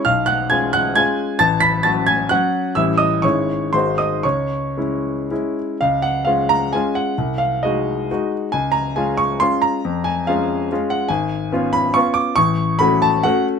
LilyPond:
\new Staff \with { instrumentName = "Grand piano" } { \time 3/4 \key cis \minor \tempo 4 = 134 << { <eis'' eis'''>8 <fis'' fis'''>8 <gis'' gis'''>8 <fis'' fis'''>8 <gis'' gis'''>4 | <a'' a'''>8 <b'' b'''>8 <a'' a'''>8 <gis'' gis'''>8 <fis'' fis'''>4 | <e'' e'''>8 <dis'' dis'''>8 <cis'' cis'''>4 <bis' bis''>8 <dis'' dis'''>8 | <cis'' cis'''>2~ <cis'' cis'''>8 r8 |
\key des \major f''8 ges''8 f''8 bes''8 aes''8 ges''8~ | ges''8 f''8 ees''4. r8 | aes''8 bes''8 aes''8 des'''8 c'''8 bes''8~ | bes''8 aes''8 f''4. ges''8 |
\key fis \minor gis''4. b''8 cis'''8 d'''8 | cis'''4 b''8 a''8 fis''8 r8 | } \\ { b,,4 <gis cis' eis'>4 <gis cis' eis'>4 | a,,4 <fis cis' fis'>4 <fis cis' fis'>4 | <a,, g cis' e'>4 <gis,, gis cis' e'>4 <gis,, gis dis' fis'>4 | cis,4 <gis cis' e'>4 <gis cis' e'>4 |
des,4 <aes des' f'>4 <aes des' f'>4 | c,4 <aes ees' ges'>4 <aes ees' ges'>4 | des,4 <aes des' f'>4 <aes des' f'>4 | f,4 <aes des' f'>4 <aes des' f'>4 |
gis,,4 <b cis' eis'>4 <b cis' eis'>4 | a,,4 <a cis' fis'>4 <a cis' fis'>4 | } >> }